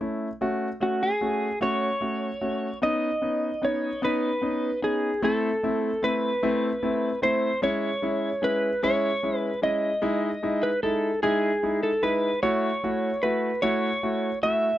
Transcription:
0.01 A3 C#4 E4
0.41 A3 C#4 F#4
0.80 A3 C#4 F#4
1.03 G#4
1.21 A3 C#4 F#4
1.61 A3 C#4 F#4 C#5
2.01 A3 C#4 F#4
2.41 A3 C#4 F#4
2.82 B3 C#4 D#4 D#5
3.22 B3 C#4 D#4
3.62 B3 C#4 D#4 C#5
4.02 B3 C#4 D#4 B4
4.42 B3 C#4 D#4
4.82 B3 C#4 D#4 G#4
5.22 A3 C4 E4 A4
5.63 A3 C4 E4
6.02 A3 C4 E4 B4
6.43 A3 C4 E4
6.83 A3 C4 E4
7.22 A3 C4 E4 C5
7.62 G#3 C#4 E4 C#5
8.02 G#3 C#4 E4
8.42 G#3 C#4 E4 B4
8.83 G#3 C#4 E4 C#5
9.23 G#3 C#4 E4
9.39 B4
9.62 G#3 C#4 E4 D#5
10.02 G#3 D#4 E4
10.43 G#3 D#4 E4
10.63 B4
10.83 G#3 D#4 E4 A4
11.23 G#3 D#4 E4 G#4
11.63 G#3 D#4 E4
11.83 A4
12.02 G#3 D#4 E4 B4
12.43 A3 E4 F#4 C#5
12.84 A3 E4 F#4
13.23 A3 E4 F#4 B4
13.62 A3 E4 F#4 C#5
14.03 A3 E4 F#4
14.43 A3 E4 F#4 E5

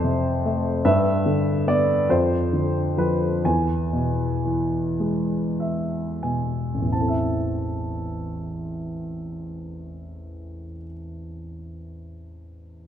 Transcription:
Already playing: F2 A4 C5
0.04 C3
0.45 A3
0.85 G2 B4 E5
1.26 D3
1.67 B3 D5
2.09 F2 F4 C5
2.53 D3
2.97 F3 B4
3.44 E2 B4 G#5
3.93 B2
4.45 E3
5.00 G#3
5.60 E5
6.23 B2 G#5
6.74 A1
6.81 E2
6.87 E3
6.92 C4 A5
7.01 A4
7.08 E5

